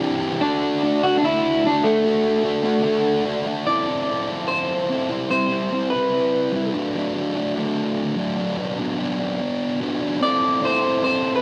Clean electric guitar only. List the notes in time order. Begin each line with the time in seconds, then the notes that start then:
Already playing: D4
0.41 D4
1.03 F#4
1.17 D4
1.25 E4
1.67 D4
1.83 A3
3.67 D5
4.48 C5
5.31 C5
5.90 B4
10.23 D5
10.65 C5
11.04 C5
11.36 B4